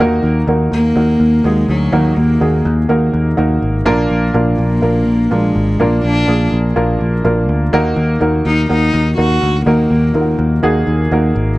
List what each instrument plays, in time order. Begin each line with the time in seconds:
0.00 picked electric bass D#2, grand piano D#3 A#3 D#4 F#4 A#4
0.23 picked electric bass D#2
0.47 picked electric bass D#2, grand piano A#3 D#4 F#4 A#4
0.72 picked electric bass D#2, cello A#3
0.96 picked electric bass D#2, grand piano A#3 D#4 F#4 A#4
1.20 picked electric bass D#2
1.44 picked electric bass D#2, cello G#3, grand piano A#3 D#4 F#4 G#4
1.68 picked electric bass D2, cello F#3
1.92 picked electric bass D#2, grand piano D#3 A#3 D#4 F#4 A#4
2.17 picked electric bass D#2, cello A#3
2.40 picked electric bass D#2, grand piano A#3 D#4 F#4 G#4
2.65 picked electric bass D#2
2.89 picked electric bass D#2, grand piano A#3 D#4 F#4 A#4
3.14 picked electric bass D#2
3.37 picked electric bass D#2, grand piano A#3 D#4 F#4 A#4
3.62 picked electric bass G#1
3.85 picked electric bass A#1, grand piano A#2 A#3 D4 F4 A#4
4.10 picked electric bass A#1
4.34 picked electric bass A#1, grand piano A#3 D4 F4 A#4
4.59 picked electric bass A#1, cello A#3
4.82 picked electric bass A#1, grand piano A#3 D4 F4 A#4
5.07 picked electric bass A#1
5.31 picked electric bass A#1, cello G#3, grand piano A#3 D4 F4 A#4
5.56 picked electric bass G#1
5.80 picked electric bass A#1, grand piano A#2 A#3 D4 F4 A#4, cello A#3
6.04 picked electric bass A#1, cello D4
6.28 picked electric bass A#1, grand piano A#3 D4 F4 G#4
6.52 picked electric bass A#1
6.76 picked electric bass A#1, grand piano A#3 D4 F4 A#4
7.01 picked electric bass A#1
7.24 picked electric bass A#1, grand piano A#3 D4 F4 A#4
7.49 picked electric bass D2
7.73 picked electric bass D#2, grand piano D#3 A#3 D#4 F#4 A#4
7.97 picked electric bass D#2
8.21 picked electric bass D#2, grand piano A#3 D#4 F#4 A#4
8.45 picked electric bass D#2, cello D#4
8.69 picked electric bass D#2, grand piano A#3 D#4 F#4 A#4, cello D#4
8.94 picked electric bass D#2
9.17 picked electric bass D#2, grand piano A#3 D#4 F#4 A#4, cello F#4
9.42 picked electric bass D2
9.66 picked electric bass D#2, grand piano D#3 A#3 D#4 F#4 A#4, cello A#3
9.91 picked electric bass D#2
10.14 picked electric bass D#2, grand piano A#3 D#4 F4 A#4
10.21 grand piano F#4
10.39 picked electric bass D#2
10.63 picked electric bass D#2, grand piano A#3 D#4 F#4 G#4
10.87 picked electric bass D#2
11.11 picked electric bass D#2, grand piano A#3 D#4 F#4 A#4
11.36 picked electric bass G#1